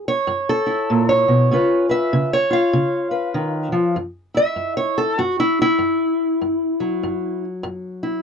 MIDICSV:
0, 0, Header, 1, 2, 480
1, 0, Start_track
1, 0, Tempo, 612870
1, 1180, Time_signature, 4, 2, 24, 8
1, 6438, End_track
2, 0, Start_track
2, 0, Title_t, "Steel-string acoustic guitar"
2, 0, Program_c, 0, 25
2, 0, Note_on_c, 0, 42, 75
2, 63, Note_on_c, 0, 73, 91
2, 179, Note_off_c, 0, 42, 0
2, 214, Note_on_c, 0, 42, 80
2, 386, Note_on_c, 0, 69, 93
2, 521, Note_on_c, 0, 64, 48
2, 660, Note_off_c, 0, 42, 0
2, 704, Note_on_c, 0, 46, 64
2, 844, Note_off_c, 0, 73, 0
2, 853, Note_on_c, 0, 73, 85
2, 863, Note_off_c, 0, 69, 0
2, 997, Note_off_c, 0, 46, 0
2, 1003, Note_on_c, 0, 47, 63
2, 1161, Note_off_c, 0, 64, 0
2, 1185, Note_off_c, 0, 47, 0
2, 1186, Note_on_c, 0, 49, 59
2, 1193, Note_on_c, 0, 61, 41
2, 1200, Note_on_c, 0, 65, 43
2, 1204, Note_on_c, 0, 71, 43
2, 1474, Note_off_c, 0, 71, 0
2, 1483, Note_on_c, 0, 71, 44
2, 1493, Note_off_c, 0, 73, 0
2, 1496, Note_on_c, 0, 76, 80
2, 1627, Note_off_c, 0, 49, 0
2, 1668, Note_on_c, 0, 49, 81
2, 1819, Note_off_c, 0, 76, 0
2, 1825, Note_off_c, 0, 71, 0
2, 1828, Note_on_c, 0, 73, 90
2, 1953, Note_off_c, 0, 65, 0
2, 1962, Note_on_c, 0, 65, 45
2, 1982, Note_on_c, 0, 77, 82
2, 2108, Note_off_c, 0, 49, 0
2, 2141, Note_on_c, 0, 49, 78
2, 2433, Note_off_c, 0, 73, 0
2, 2436, Note_on_c, 0, 71, 43
2, 2584, Note_off_c, 0, 49, 0
2, 2618, Note_on_c, 0, 51, 65
2, 2912, Note_off_c, 0, 51, 0
2, 2915, Note_on_c, 0, 53, 63
2, 3080, Note_off_c, 0, 71, 0
2, 3083, Note_off_c, 0, 65, 0
2, 3086, Note_off_c, 0, 61, 0
2, 3102, Note_off_c, 0, 53, 0
2, 3102, Note_off_c, 0, 77, 0
2, 3102, Note_on_c, 0, 42, 68
2, 3403, Note_on_c, 0, 64, 43
2, 3423, Note_on_c, 0, 76, 90
2, 3545, Note_off_c, 0, 42, 0
2, 3571, Note_on_c, 0, 42, 71
2, 3732, Note_off_c, 0, 76, 0
2, 3735, Note_on_c, 0, 73, 86
2, 3898, Note_off_c, 0, 73, 0
2, 3898, Note_on_c, 0, 69, 87
2, 4019, Note_off_c, 0, 42, 0
2, 4056, Note_on_c, 0, 42, 77
2, 4059, Note_off_c, 0, 64, 0
2, 4060, Note_off_c, 0, 69, 0
2, 4062, Note_on_c, 0, 66, 79
2, 4222, Note_off_c, 0, 66, 0
2, 4227, Note_on_c, 0, 64, 84
2, 4384, Note_off_c, 0, 64, 0
2, 4399, Note_on_c, 0, 64, 93
2, 4502, Note_off_c, 0, 42, 0
2, 4531, Note_on_c, 0, 42, 74
2, 4979, Note_off_c, 0, 42, 0
2, 5024, Note_on_c, 0, 42, 62
2, 5327, Note_on_c, 0, 54, 46
2, 5465, Note_off_c, 0, 42, 0
2, 5509, Note_on_c, 0, 42, 71
2, 5828, Note_off_c, 0, 64, 0
2, 5947, Note_off_c, 0, 42, 0
2, 5978, Note_on_c, 0, 42, 84
2, 6288, Note_on_c, 0, 64, 44
2, 6420, Note_off_c, 0, 42, 0
2, 6438, Note_off_c, 0, 54, 0
2, 6438, Note_off_c, 0, 64, 0
2, 6438, End_track
0, 0, End_of_file